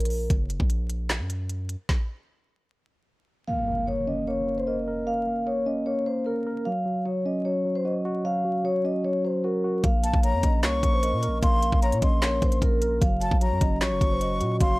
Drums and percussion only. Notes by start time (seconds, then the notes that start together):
0.00 closed hi-hat
0.05 closed hi-hat
0.10 open hi-hat
0.30 kick, closed hi-hat
0.50 closed hi-hat
0.60 kick
0.70 closed hi-hat
0.90 closed hi-hat
1.10 snare, clap, closed hi-hat
1.30 closed hi-hat
1.49 closed hi-hat
1.69 closed hi-hat
1.89 kick, snare
9.84 kick, closed hi-hat
10.03 closed hi-hat
10.13 kick
10.23 closed hi-hat
10.43 kick, closed hi-hat
10.63 snare, clap, closed hi-hat
10.83 kick, closed hi-hat
11.03 closed hi-hat
11.23 closed hi-hat
11.43 kick, closed hi-hat
11.62 closed hi-hat
11.72 kick
11.82 closed hi-hat
11.92 closed hi-hat
12.02 kick, closed hi-hat
12.22 snare, clap, closed hi-hat
12.42 kick, closed hi-hat
12.52 closed hi-hat
12.62 kick, closed hi-hat
12.82 closed hi-hat
13.02 kick, closed hi-hat
13.21 closed hi-hat
13.31 kick
13.41 closed hi-hat
13.61 kick, closed hi-hat
13.81 snare, clap, closed hi-hat
14.01 kick, closed hi-hat
14.21 closed hi-hat
14.41 closed hi-hat
14.61 kick, closed hi-hat